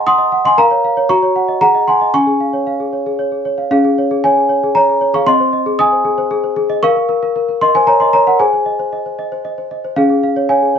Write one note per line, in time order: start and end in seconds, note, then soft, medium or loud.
0.00 0.54 G#4 medium
0.00 0.18 D#5 medium
0.00 0.06 F#5 medium
0.00 0.47 G#5 medium
0.00 0.58 A#5 loud
0.00 0.08 C6 loud
0.00 0.59 C#6 loud
0.06 0.27 F#5 medium
0.06 0.43 C6 loud
0.06 0.45 D#6 loud
0.18 0.39 D#5 medium
0.32 0.53 F#5 medium
0.45 0.57 D#5 medium
0.45 0.58 G#5 medium
0.45 0.58 C6 loud
0.58 1.08 A#4 medium
0.58 0.83 F5 loud
0.58 1.09 A#5 loud
0.71 0.91 C#5 medium
0.84 1.05 F5 medium
0.97 1.10 C#5 medium
1.09 1.60 F#4 medium
1.09 1.58 A#5 medium
1.09 1.62 C#6 loud
1.23 1.43 C#5 medium
1.36 1.56 F#5 medium
1.48 1.61 D#5 medium
1.61 2.12 G#4 medium
1.61 1.86 F#5 loud
1.61 1.88 A#5 loud
1.75 1.96 D#5 medium
1.88 2.09 F#5 medium
1.88 2.13 G#5 medium
1.88 2.14 C6 medium
2.01 2.14 D#5 medium
2.14 3.67 C#4 medium
2.14 3.16 G#5 medium
2.14 3.19 C#6 loud
2.27 2.48 G#4 medium
2.40 2.61 F5 medium
2.53 2.74 C#5 medium
2.67 2.88 F5 medium
2.80 3.01 G#4 soft
2.93 3.14 C#5 soft
3.06 3.27 G#4 medium
3.19 3.40 C#5 medium
3.32 3.53 G#4 soft
3.45 3.66 C#5 medium
3.58 3.70 F5 medium
3.71 5.23 C#4 medium
3.71 3.83 G#4 medium
3.71 4.24 F5 loud
3.84 4.05 G#4 medium
3.98 4.19 C#5 medium
4.11 4.32 G#4 medium
4.24 4.48 C#5 medium
4.24 4.76 G#5 loud
4.36 4.57 G#4 soft
4.49 4.70 C#5 medium
4.63 4.84 G#4 medium
4.75 5.00 C#5 medium
4.75 5.14 A#5 loud
4.89 5.10 G#4 soft
5.01 5.22 C#5 medium
5.14 5.27 G#4 medium
5.14 5.27 F5 medium
5.14 5.28 C#6 loud
5.27 6.78 C4 medium
5.27 5.52 D#5 medium
5.27 5.79 C6 loud
5.40 5.61 C5 medium
5.53 5.74 D#5 medium
5.66 5.87 G#4 medium
5.79 6.00 D#5 medium
5.79 6.79 G#5 medium
5.79 6.83 D#6 loud
5.92 6.13 C5 medium
6.05 6.26 G#4 medium
6.18 6.39 C5 medium
6.31 6.52 G#4 medium
6.44 6.65 C5 medium
6.56 6.77 G#4 medium
6.70 6.83 D#5 medium
6.83 6.95 A#4 loud
6.83 7.57 F5 loud
6.83 7.61 C#6 loud
6.97 7.08 A#4 medium
7.09 7.21 A#4 medium
7.23 7.35 A#4 medium
7.36 7.47 A#4 medium
7.49 7.60 A#4 medium
7.61 7.73 A#4 medium
7.61 7.74 D#5 medium
7.61 7.74 C6 loud
7.74 7.85 A#4 medium
7.74 7.87 C5 medium
7.74 7.88 G#5 loud
7.87 7.99 A#4 medium
7.87 8.00 C#5 medium
7.87 8.00 A#5 loud
8.00 8.12 A#4 medium
8.00 8.13 D#5 medium
8.00 8.13 C6 medium
8.13 8.27 A#4 medium
8.13 8.26 C#5 medium
8.13 8.26 A#5 loud
8.27 8.40 A#4 medium
8.27 8.40 F#5 medium
8.39 9.93 G#4 medium
8.39 8.52 C5 medium
8.39 9.70 G#5 medium
8.53 8.74 C5 medium
8.66 8.87 D#5 medium
8.79 9.00 C5 medium
8.93 9.13 D#5 medium
9.06 9.26 C5 soft
9.19 9.39 D#5 medium
9.32 9.52 C5 medium
9.45 9.65 D#5 medium
9.58 9.79 C5 soft
9.71 9.92 D#5 medium
9.85 9.97 C5 medium
9.96 10.79 C#4 medium
9.96 10.09 G#4 medium
9.96 10.22 F5 loud
10.10 10.31 G#4 medium
10.23 10.44 F5 medium
10.36 10.49 C#5 medium
10.49 10.74 C#5 medium
10.49 10.70 F5 medium
10.49 10.79 G#5 medium
10.63 10.79 G#4 soft
10.75 10.79 C#5 medium